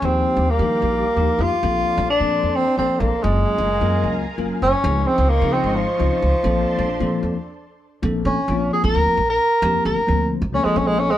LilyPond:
<<
  \new Staff \with { instrumentName = "String machine" } { \time 7/8 \key bes \major \tempo 4 = 131 <g' f'' d'''>2.~ <g' f'' d'''>8 | <d'' a'' c'''>2.~ <d'' a'' c'''>8 | <f'' aes'' bes''>2.~ <f'' aes'' bes''>8 | <f' ees'' c''' des'''>2.~ <f' ees'' c''' des'''>8 |
<d'' a'' c'''>2 r4. | r2. r8 | r2. r8 | }
  \new Staff \with { instrumentName = "Tenor saxophone" } { \time 7/8 \key bes \major c'4 bes2 f'8~ | f'4 d'4 c'8 c'8 bes8 | aes2~ aes8 r8 des'8~ | des'8 c'8 bes8 c'8 f4.~ |
f2~ f8 r4 | r8 des'4 aes'16 bes'4 bes'8.~ | bes'8 bes'4 r8 des'16 aes16 des'16 aes16 des'16 aes16 | }
  \new Staff \with { instrumentName = "Tine electric piano" } { \time 7/8 \key bes \major <f bes d' ees' g'>4 r16 <f bes d' ees' bes'>4 r16 <f bes d' ees' g'>8. r16 | <f bes c' d' a'>4 r16 <f bes c' d' a'>4 r16 <f bes c' d' a'>8. r16 | <ges bes des' f' aes'>4 r16 <ges bes des' f' bes'>4 r16 <ges bes des' f' bes'>8. r16 | <f c' des' ees' aes'>4 r16 <f c' des' ees' aes'>4 r16 <f c' des' ees' f'>8. r16 |
<f bes c' d' a'>4 r16 <f bes c' d' a'>8. r4. | <f bes c' d' a'>8. r16 <f bes c' d' f'>4. r4 | <f bes c' d' g'>8. r16 <f bes c' d' c''>8. r16 <f bes c' d' a'>16 <f bes c' d' a'>4 r16 | }
  \new Staff \with { instrumentName = "Upright bass" } { \clef bass \time 7/8 \key bes \major ees,8 r16 ees,8 ees8 bes,,8 r16 ees,16 r16 f,16 r16 | bes,,8 r16 bes,,8 bes,8 f,8 r16 bes,,16 r16 bes,,16 r16 | ges,,8 r16 ges,,8 ges,8 des,8 r16 ges,,16 r16 ges,,16 r16 | des,8 r16 des,8 des8 aes,,8 r16 des,16 r16 des,16 r16 |
bes,,8 r16 bes,,8 bes,8 f,16 r4. | bes,,8 bes,16 r16 bes,,8 r16 bes,,16 d,16 r16 bes,,8 r8 | f,16 r16 d,16 r16 d,8. a,,16 d,16 r16 bes,,4 | }
>>